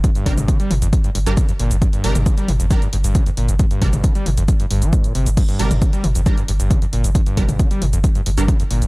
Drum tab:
CC |----------------|----------------|----------------|x---------------|
HH |xxoxxxoxxxoxxxox|xxoxxxoxxxoxxxox|xxoxxxoxxxoxxxox|xxoxxxoxxxoxxxox|
SH |xx-xxx-xxx-xxx-x|xx-xxx-xxx-xxx-x|xx-xxx-xxx-xxx-x|xx-xxx-xxx-xxx-x|
T2 |---o--o---------|---o--o---------|--oo--o---------|---o--o---------|
BD |o-o-o---o---o---|o---o---o---o---|o-o-o---o---o---|o---o---o---o---|

CC |----------------|
HH |xxoxxxoxxxoxxxox|
SH |xx-xxx-xxx-xxx-x|
T2 |---o--o---------|
BD |o-o-o---o---o---|